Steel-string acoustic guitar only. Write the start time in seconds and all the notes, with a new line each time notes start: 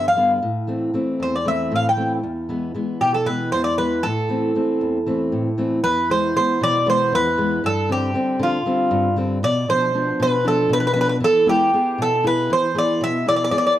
Already playing: G2
0.17 D3 G3 B3
0.43 A2
0.67 E3 A3 C4
0.94 E3 A3 C4
1.20 E2
1.45 E3 A3 C4
1.72 A2
1.97 E3 A3 C4
2.23 E2
2.49 E3 G#3 B3
2.74 E3 G#3 B3
3.01 B2
3.26 E3 G#3 B3
3.53 E2
3.78 E3 G#3 B3
4.05 A2
4.29 E3 A3 C4
4.55 E3 A3 C4
4.81 E2
5.06 E3 A3 C4
5.32 A2
5.58 E3 A3 C4
5.84 E2
6.10 E3 G#3 B3
6.36 E3 G#3 B3
6.61 B2
6.86 E3 G#3 B3
7.12 E2
7.37 E3 G#3 B3
7.64 G2
7.89 D3 G3 C4
8.14 D3 G3 C4
8.39 D3
8.66 D3 G3 C4
8.91 G2
9.16 D3 G3 C4
9.43 B2
9.69 B2 F3 D4
9.94 F3 B3 D4
10.20 B2
10.45 F3 B3 D4
10.69 B2
10.95 F3 B3 D4
11.20 E3
11.46 G#3 B3 E4
11.74 B3 E4 G#4
11.98 B2
12.24 B3 E4 G#4
12.50 E3
12.74 B3 E4 G#4
13.01 B2
13.26 B3 E4 G#4
13.51 B3 E4 G#4